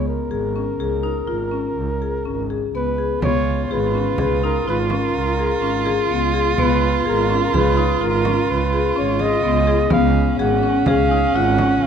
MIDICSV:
0, 0, Header, 1, 6, 480
1, 0, Start_track
1, 0, Tempo, 484262
1, 3201, Time_signature, 7, 2, 24, 8
1, 4630, Tempo, 476569
1, 11878, End_track
2, 0, Start_track
2, 0, Title_t, "Flugelhorn"
2, 0, Program_c, 0, 56
2, 80, Note_on_c, 0, 70, 70
2, 2562, Note_off_c, 0, 70, 0
2, 2730, Note_on_c, 0, 71, 78
2, 3174, Note_off_c, 0, 71, 0
2, 3202, Note_on_c, 0, 73, 98
2, 3614, Note_off_c, 0, 73, 0
2, 3614, Note_on_c, 0, 73, 59
2, 3693, Note_on_c, 0, 71, 73
2, 3707, Note_off_c, 0, 73, 0
2, 4161, Note_off_c, 0, 71, 0
2, 4169, Note_on_c, 0, 71, 80
2, 4383, Note_off_c, 0, 71, 0
2, 4406, Note_on_c, 0, 70, 71
2, 4621, Note_off_c, 0, 70, 0
2, 4643, Note_on_c, 0, 71, 73
2, 4749, Note_off_c, 0, 71, 0
2, 4901, Note_on_c, 0, 70, 79
2, 6292, Note_off_c, 0, 70, 0
2, 6560, Note_on_c, 0, 71, 85
2, 7008, Note_off_c, 0, 71, 0
2, 7051, Note_on_c, 0, 70, 79
2, 7382, Note_off_c, 0, 70, 0
2, 7417, Note_on_c, 0, 70, 75
2, 7521, Note_off_c, 0, 70, 0
2, 7539, Note_on_c, 0, 71, 85
2, 8015, Note_on_c, 0, 70, 78
2, 8030, Note_off_c, 0, 71, 0
2, 8491, Note_on_c, 0, 71, 85
2, 8506, Note_off_c, 0, 70, 0
2, 8966, Note_off_c, 0, 71, 0
2, 8971, Note_on_c, 0, 73, 79
2, 9203, Note_on_c, 0, 75, 91
2, 9218, Note_off_c, 0, 73, 0
2, 9915, Note_off_c, 0, 75, 0
2, 9924, Note_on_c, 0, 77, 91
2, 10365, Note_off_c, 0, 77, 0
2, 10397, Note_on_c, 0, 78, 86
2, 10870, Note_on_c, 0, 77, 105
2, 10885, Note_off_c, 0, 78, 0
2, 11359, Note_on_c, 0, 78, 90
2, 11374, Note_off_c, 0, 77, 0
2, 11835, Note_on_c, 0, 77, 93
2, 11850, Note_off_c, 0, 78, 0
2, 11878, Note_off_c, 0, 77, 0
2, 11878, End_track
3, 0, Start_track
3, 0, Title_t, "Cello"
3, 0, Program_c, 1, 42
3, 3177, Note_on_c, 1, 65, 102
3, 9901, Note_on_c, 1, 61, 102
3, 9916, Note_off_c, 1, 65, 0
3, 11878, Note_off_c, 1, 61, 0
3, 11878, End_track
4, 0, Start_track
4, 0, Title_t, "Marimba"
4, 0, Program_c, 2, 12
4, 0, Note_on_c, 2, 59, 67
4, 102, Note_off_c, 2, 59, 0
4, 307, Note_on_c, 2, 68, 61
4, 442, Note_off_c, 2, 68, 0
4, 552, Note_on_c, 2, 61, 58
4, 685, Note_off_c, 2, 61, 0
4, 793, Note_on_c, 2, 68, 69
4, 926, Note_off_c, 2, 68, 0
4, 1025, Note_on_c, 2, 63, 62
4, 1160, Note_off_c, 2, 63, 0
4, 1263, Note_on_c, 2, 65, 64
4, 1399, Note_off_c, 2, 65, 0
4, 1499, Note_on_c, 2, 61, 64
4, 1775, Note_off_c, 2, 61, 0
4, 2000, Note_on_c, 2, 68, 51
4, 2134, Note_off_c, 2, 68, 0
4, 2235, Note_on_c, 2, 61, 55
4, 2371, Note_off_c, 2, 61, 0
4, 2481, Note_on_c, 2, 68, 57
4, 2618, Note_off_c, 2, 68, 0
4, 2724, Note_on_c, 2, 59, 58
4, 2860, Note_off_c, 2, 59, 0
4, 2957, Note_on_c, 2, 68, 62
4, 3094, Note_off_c, 2, 68, 0
4, 3204, Note_on_c, 2, 59, 71
4, 3474, Note_off_c, 2, 59, 0
4, 3676, Note_on_c, 2, 68, 70
4, 3812, Note_off_c, 2, 68, 0
4, 3914, Note_on_c, 2, 61, 64
4, 4050, Note_off_c, 2, 61, 0
4, 4148, Note_on_c, 2, 68, 65
4, 4285, Note_off_c, 2, 68, 0
4, 4396, Note_on_c, 2, 63, 74
4, 4530, Note_off_c, 2, 63, 0
4, 4634, Note_on_c, 2, 65, 70
4, 4770, Note_off_c, 2, 65, 0
4, 4868, Note_on_c, 2, 61, 68
4, 5143, Note_off_c, 2, 61, 0
4, 5353, Note_on_c, 2, 68, 62
4, 5490, Note_off_c, 2, 68, 0
4, 5587, Note_on_c, 2, 61, 65
4, 5726, Note_off_c, 2, 61, 0
4, 5824, Note_on_c, 2, 68, 74
4, 5964, Note_off_c, 2, 68, 0
4, 6071, Note_on_c, 2, 59, 62
4, 6210, Note_off_c, 2, 59, 0
4, 6309, Note_on_c, 2, 68, 69
4, 6449, Note_off_c, 2, 68, 0
4, 6555, Note_on_c, 2, 59, 80
4, 6830, Note_off_c, 2, 59, 0
4, 7033, Note_on_c, 2, 68, 74
4, 7172, Note_off_c, 2, 68, 0
4, 7276, Note_on_c, 2, 61, 69
4, 7414, Note_off_c, 2, 61, 0
4, 7518, Note_on_c, 2, 68, 77
4, 7655, Note_off_c, 2, 68, 0
4, 7755, Note_on_c, 2, 63, 72
4, 7894, Note_off_c, 2, 63, 0
4, 7993, Note_on_c, 2, 65, 75
4, 8133, Note_off_c, 2, 65, 0
4, 8236, Note_on_c, 2, 61, 71
4, 8511, Note_off_c, 2, 61, 0
4, 8716, Note_on_c, 2, 68, 71
4, 8854, Note_off_c, 2, 68, 0
4, 8952, Note_on_c, 2, 61, 72
4, 9090, Note_off_c, 2, 61, 0
4, 9190, Note_on_c, 2, 68, 66
4, 9329, Note_off_c, 2, 68, 0
4, 9427, Note_on_c, 2, 59, 73
4, 9565, Note_off_c, 2, 59, 0
4, 9666, Note_on_c, 2, 68, 76
4, 9804, Note_off_c, 2, 68, 0
4, 9900, Note_on_c, 2, 59, 91
4, 10176, Note_off_c, 2, 59, 0
4, 10393, Note_on_c, 2, 68, 74
4, 10529, Note_off_c, 2, 68, 0
4, 10634, Note_on_c, 2, 61, 72
4, 10769, Note_off_c, 2, 61, 0
4, 10880, Note_on_c, 2, 68, 84
4, 11014, Note_off_c, 2, 68, 0
4, 11119, Note_on_c, 2, 63, 77
4, 11253, Note_off_c, 2, 63, 0
4, 11362, Note_on_c, 2, 65, 78
4, 11495, Note_off_c, 2, 65, 0
4, 11596, Note_on_c, 2, 61, 67
4, 11866, Note_off_c, 2, 61, 0
4, 11878, End_track
5, 0, Start_track
5, 0, Title_t, "Double bass"
5, 0, Program_c, 3, 43
5, 0, Note_on_c, 3, 37, 76
5, 250, Note_off_c, 3, 37, 0
5, 297, Note_on_c, 3, 32, 77
5, 719, Note_off_c, 3, 32, 0
5, 779, Note_on_c, 3, 37, 69
5, 1200, Note_off_c, 3, 37, 0
5, 1259, Note_on_c, 3, 32, 67
5, 1683, Note_off_c, 3, 32, 0
5, 1739, Note_on_c, 3, 37, 71
5, 1953, Note_off_c, 3, 37, 0
5, 2230, Note_on_c, 3, 32, 68
5, 2658, Note_off_c, 3, 32, 0
5, 2707, Note_on_c, 3, 37, 64
5, 3136, Note_off_c, 3, 37, 0
5, 3187, Note_on_c, 3, 37, 79
5, 3612, Note_off_c, 3, 37, 0
5, 3671, Note_on_c, 3, 32, 84
5, 4092, Note_off_c, 3, 32, 0
5, 4141, Note_on_c, 3, 37, 83
5, 4564, Note_off_c, 3, 37, 0
5, 4614, Note_on_c, 3, 32, 88
5, 5044, Note_off_c, 3, 32, 0
5, 5099, Note_on_c, 3, 37, 72
5, 5527, Note_off_c, 3, 37, 0
5, 5582, Note_on_c, 3, 32, 70
5, 6010, Note_off_c, 3, 32, 0
5, 6068, Note_on_c, 3, 37, 73
5, 6496, Note_off_c, 3, 37, 0
5, 6556, Note_on_c, 3, 37, 80
5, 6980, Note_off_c, 3, 37, 0
5, 7038, Note_on_c, 3, 32, 89
5, 7461, Note_off_c, 3, 32, 0
5, 7516, Note_on_c, 3, 37, 86
5, 7941, Note_off_c, 3, 37, 0
5, 7998, Note_on_c, 3, 32, 92
5, 8422, Note_off_c, 3, 32, 0
5, 8482, Note_on_c, 3, 37, 75
5, 8903, Note_off_c, 3, 37, 0
5, 8965, Note_on_c, 3, 32, 75
5, 9382, Note_off_c, 3, 32, 0
5, 9436, Note_on_c, 3, 37, 90
5, 9855, Note_off_c, 3, 37, 0
5, 9919, Note_on_c, 3, 37, 96
5, 10337, Note_off_c, 3, 37, 0
5, 10398, Note_on_c, 3, 32, 86
5, 10816, Note_off_c, 3, 32, 0
5, 10883, Note_on_c, 3, 37, 85
5, 11298, Note_off_c, 3, 37, 0
5, 11355, Note_on_c, 3, 32, 101
5, 11772, Note_off_c, 3, 32, 0
5, 11833, Note_on_c, 3, 37, 82
5, 11878, Note_off_c, 3, 37, 0
5, 11878, End_track
6, 0, Start_track
6, 0, Title_t, "Frame drum"
6, 3194, Note_on_c, 9, 64, 55
6, 3293, Note_off_c, 9, 64, 0
6, 3433, Note_on_c, 9, 64, 16
6, 3532, Note_off_c, 9, 64, 0
6, 3672, Note_on_c, 9, 64, 18
6, 3771, Note_off_c, 9, 64, 0
6, 3912, Note_on_c, 9, 64, 18
6, 4011, Note_off_c, 9, 64, 0
6, 4145, Note_on_c, 9, 64, 50
6, 4244, Note_off_c, 9, 64, 0
6, 4860, Note_on_c, 9, 64, 44
6, 4961, Note_off_c, 9, 64, 0
6, 5828, Note_on_c, 9, 64, 35
6, 5929, Note_off_c, 9, 64, 0
6, 6069, Note_on_c, 9, 64, 18
6, 6170, Note_off_c, 9, 64, 0
6, 6554, Note_on_c, 9, 64, 54
6, 6654, Note_off_c, 9, 64, 0
6, 7031, Note_on_c, 9, 64, 20
6, 7132, Note_off_c, 9, 64, 0
6, 7275, Note_on_c, 9, 64, 18
6, 7376, Note_off_c, 9, 64, 0
6, 7520, Note_on_c, 9, 64, 57
6, 7621, Note_off_c, 9, 64, 0
6, 8236, Note_on_c, 9, 64, 52
6, 8337, Note_off_c, 9, 64, 0
6, 9185, Note_on_c, 9, 64, 42
6, 9286, Note_off_c, 9, 64, 0
6, 9422, Note_on_c, 9, 64, 19
6, 9523, Note_off_c, 9, 64, 0
6, 9900, Note_on_c, 9, 64, 60
6, 10001, Note_off_c, 9, 64, 0
6, 10384, Note_on_c, 9, 64, 20
6, 10485, Note_off_c, 9, 64, 0
6, 10630, Note_on_c, 9, 64, 21
6, 10730, Note_off_c, 9, 64, 0
6, 10864, Note_on_c, 9, 64, 59
6, 10965, Note_off_c, 9, 64, 0
6, 11594, Note_on_c, 9, 64, 57
6, 11694, Note_off_c, 9, 64, 0
6, 11878, End_track
0, 0, End_of_file